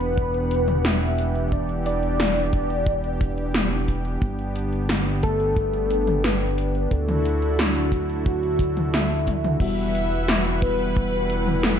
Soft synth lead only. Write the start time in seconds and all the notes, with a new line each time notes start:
Already playing: B4
0.85 E5
1.52 D5
1.86 D5
5.23 A4
6.24 B4
6.92 A4
7.59 F#4
8.26 F#4
8.94 E5
9.61 E5
10.62 B4
11.63 A4